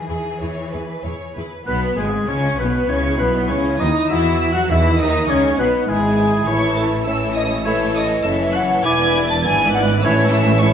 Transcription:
Already playing: cello section E3, violin section G#4
0.08 double bass section E2, viola section E4 G#4, violin section G#4
0.39 double bass section E2, viola section E4 G#4, violin section C#5
0.72 double bass section E2, viola section E4 G#4, violin section B4
1.03 double bass section E2, viola section E4 G#4, violin section C#5
1.36 double bass section E2, viola section E4 G#4, violin section B4
1.66 double bass section B1, cello section B2, violin section B3 B5, french horn section B3, viola section B3, oboe B4, flute B4, clarinet B4
1.96 double bass section G#1, cello section G#2, french horn section G#3, violin section G#3 G#5, viola section G#3, clarinet G#4, flute G#4, oboe G#4
2.28 double bass section C#2, cello section C#3, violin section C#4 C#6, french horn section C#4, viola section C#4, clarinet C#5, oboe C#5, flute C#5
2.58 double bass section B1, cello section B2, violin section B3 B5, french horn section B3, viola section B3, clarinet B4, flute B4, oboe B4
2.88 double bass section C#2, cello section C#3, violin section C#4 C#6, french horn section C#4, viola section C#4, bassoon E4, clarinet C#5, flute C#5, oboe C#5
3.19 double bass section B1, cello section B2, french horn section B3, violin section B3 B5, viola section B3, clarinet B4, oboe B4, flute B4
3.47 double bass section C#2, cello section C#3, french horn section C#4, violin section C#4 C#6, viola section C#4, clarinet C#5, oboe C#5, flute C#5
3.79 double bass section D#2, cello section D#3, french horn section D#4, violin section D#4 D#6, viola section D#4, clarinet D#5, oboe D#5, flute D#5
4.09 double bass section E2, cello section E3, french horn section E4, violin section E4 E6, viola section E4, bassoon F#4, oboe E5, clarinet E5, flute E5
4.53 cello section F#3, french horn section F#4, violin section F#4 F#6, viola section F#4, oboe F#5, clarinet F#5, flute F#5
4.68 double bass section E2, cello section E3, bassoon D#4, french horn section E4, viola section E4, violin section E4 E6, oboe E5, flute E5, clarinet E5
4.99 double bass section D#2, cello section D#3, violin section D#4 D#6, french horn section D#4, viola section D#4, clarinet D#5, oboe D#5, flute D#5
5.28 double bass section C#2, cello section C#3, french horn section C#4, violin section C#4 C#6, viola section C#4, clarinet C#5, oboe C#5, flute C#5
5.58 double bass section B1, cello section B2, french horn section B3, violin section B3 B5, viola section B3, flute B4, clarinet B4, oboe B4
5.86 double bass section G#1, cello section G#2, french horn section G#3, viola section G#3, bassoon E4, flute G#4, oboe G#4, clarinet G#4, violin section G#5
5.90 violin section G#3
6.46 double bass section A1, cello section A2, french horn section E3 E4, viola section E3 E4, clarinet E4, violin section A4 C#5 C#6, oboe C#5, flute C#5
6.76 flute A4, violin section A5
7.05 viola section E3 E4, bassoon C#4, violin section A4 C#5 E6, flute E5
7.35 flute D#5, violin section D#6
7.65 viola section E3 E4, bassoon A3, clarinet E4, violin section A4 C#5 E6, oboe C#5, flute E5
7.96 flute D#5, violin section D#6
8.23 double bass section F#1, cello section F#2, viola section E3 E4, bassoon C#4, violin section A4 C#5 E6, flute E5
8.52 flute F#5, violin section F#6
8.84 double bass section E1, cello section E2, viola section E3 E4, french horn section D4, bassoon E4, clarinet E4, violin section B4 D5 G#6, oboe D5, flute G#5
9.30 flute A5, violin section A6
9.43 double bass section G#1, cello section G#2, viola section E3 E4, bassoon B3, violin section B4 D5 G#6, flute G#5
9.71 flute F#5, violin section F#6
10.01 double bass section A1, cello section A2, viola section E3 E4, french horn section C#4, bassoon C#4, violin section A4 C#5 E6, oboe C#5
10.05 clarinet E4, flute E5
10.30 flute E5, violin section E6
10.59 bassoon E4, violin section A4 C#5 C#6, flute C#5
10.63 viola section E3 E4

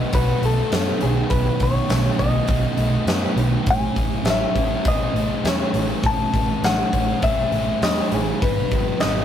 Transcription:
Already playing: distorted electric guitar B2 D#3 A3 B3, clean electric guitar D#5
0.12 picked electric bass B1, distorted electric guitar F#4, clean electric guitar B4, kick, open hi-hat
0.42 picked electric bass B1, distorted electric guitar A3, clean electric guitar A4, open hi-hat
0.72 picked electric bass F#2, distorted electric guitar B3, snare, open hi-hat
1.01 picked electric bass B1, distorted electric guitar D#3, clean electric guitar G#4, open hi-hat
1.30 picked electric bass B1, distorted electric guitar B2, clean electric guitar B4, kick, open hi-hat
1.60 picked electric bass B1, distorted electric guitar D#3, clean electric guitar C#5, kick, open hi-hat
1.89 picked electric bass B1, distorted electric guitar A3, snare, open hi-hat
2.19 picked electric bass B1, distorted electric guitar B3, clean electric guitar D#5, kick, open hi-hat
2.48 picked electric bass B1, distorted electric guitar F#4, kick, open hi-hat
2.77 picked electric bass B1, distorted electric guitar A3, open hi-hat
3.06 picked electric bass F#2, distorted electric guitar B3, snare, open hi-hat
3.36 picked electric bass B1, distorted electric guitar D#3, open hi-hat
3.66 picked electric bass A1, distorted electric guitar A2, kick, open hi-hat
3.71 clean electric guitar G#5
3.96 picked electric bass A1, distorted electric guitar E3, kick, open hi-hat
4.24 picked electric bass A1, distorted electric guitar A3, snare, open hi-hat
4.30 clean electric guitar E5
4.56 picked electric bass A1, distorted electric guitar C#4, kick, open hi-hat
4.85 picked electric bass A1, distorted electric guitar G#4, clean electric guitar D#5, kick, open hi-hat
5.14 picked electric bass A1, distorted electric guitar A3, open hi-hat
5.44 picked electric bass E2, distorted electric guitar C#4, clean electric guitar C#5, snare, open hi-hat
5.74 picked electric bass A1, distorted electric guitar E3, open hi-hat
6.03 picked electric bass A1, distorted electric guitar A2, clean electric guitar A5, kick, open hi-hat
6.34 picked electric bass A1, distorted electric guitar E3, kick, open hi-hat
6.63 picked electric bass A1, distorted electric guitar A3, clean electric guitar F#5, snare, open hi-hat
6.93 picked electric bass A1, distorted electric guitar C#4, kick, open hi-hat
7.22 picked electric bass A1, distorted electric guitar G#4, clean electric guitar E5, kick, open hi-hat
7.52 picked electric bass A1, distorted electric guitar A3, open hi-hat
7.82 picked electric bass E2, distorted electric guitar C#4, clean electric guitar D#5, snare, open hi-hat
8.12 picked electric bass A1, distorted electric guitar E3, clean electric guitar G#4, open hi-hat
8.42 picked electric bass G#1, distorted electric guitar G#2, clean electric guitar B4, kick, open hi-hat
8.71 picked electric bass G#1, distorted electric guitar F#3, kick, open hi-hat
9.00 picked electric bass G#1, distorted electric guitar B3, clean electric guitar D#5, snare, open hi-hat

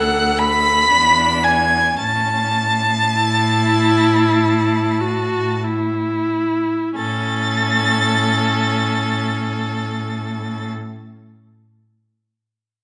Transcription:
Already playing: cello D2, viola A4, violin F#5 F#6
0.38 violin B5 B6
0.90 cello E2, viola D4
1.44 violin G#5 G#6
1.98 cello A2, viola C#4, violin A5 A6
3.14 viola E4
5.00 viola F#4
5.64 viola E4
6.95 cello A2, viola C#4, violin A4 A6

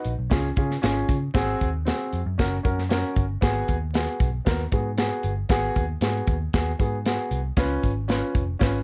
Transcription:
Already playing: upright piano D#4 F#4 B4
0.05 picked electric bass A#1, closed hi-hat
0.19 picked electric bass B1
0.30 picked electric bass C#2, upright piano C#4 F4 G#4, kick, snare, closed hi-hat
0.56 picked electric bass C#3, upright piano C#4 F4 G#4, kick, closed hi-hat
0.71 snare
0.82 picked electric bass G#1, upright piano C#4 F4 G#4, snare, closed hi-hat
1.09 picked electric bass C#3, kick, closed hi-hat
1.34 picked electric bass G#1, upright piano C4 F#4 G#4, kick, snare, closed hi-hat
1.61 picked electric bass D#2, kick, closed hi-hat
1.85 upright piano C4 F#4 G#4, snare, closed hi-hat
2.13 picked electric bass F2, closed hi-hat
2.26 picked electric bass F#2
2.38 picked electric bass F#1, upright piano C#4 F#4 A#4, kick, snare, closed hi-hat
2.63 picked electric bass F#2, upright piano C#4 F#4 A#4, kick, closed hi-hat
2.78 snare
2.89 upright piano C#4 F#4 A#4, snare, closed hi-hat
3.16 picked electric bass G1, kick, closed hi-hat
3.41 picked electric bass G#1, upright piano B3 F#4 G#4, kick, snare, closed hi-hat
3.68 picked electric bass D#2, kick, closed hi-hat
3.93 upright piano B3 F#4 G#4, snare, closed hi-hat
4.20 picked electric bass B1, kick, closed hi-hat
4.45 picked electric bass D#2, upright piano B3 F#4 A#4, kick, snare, closed hi-hat
4.72 picked electric bass G#2, upright piano B3 F#4 G#4, kick, closed hi-hat
4.97 upright piano B3 F#4 G#4, snare, closed hi-hat
5.23 picked electric bass G1, closed hi-hat
5.49 picked electric bass G#1, upright piano B3 F#4 G#4, kick, snare, closed hi-hat
5.76 picked electric bass D#2, kick, closed hi-hat
6.01 picked electric bass G#2, upright piano B3 F#4 G#4, snare, closed hi-hat
6.27 picked electric bass D#2, kick, closed hi-hat
6.53 picked electric bass D#2, upright piano B3 F#4 G#4, kick, snare, closed hi-hat
6.79 picked electric bass G#2, upright piano B3 F#4 G#4, kick, closed hi-hat
7.06 upright piano B3 F#4 G#4, snare, closed hi-hat
7.31 picked electric bass C2, closed hi-hat
7.57 picked electric bass C#2, upright piano C#4 F4 B4, kick, snare, closed hi-hat
7.83 picked electric bass G#1, kick, closed hi-hat
8.08 upright piano C#4 F4 B4, snare, closed hi-hat
8.35 picked electric bass F1, kick, closed hi-hat
8.59 picked electric bass G#1, upright piano C#4 F4 B4, kick, snare, closed hi-hat

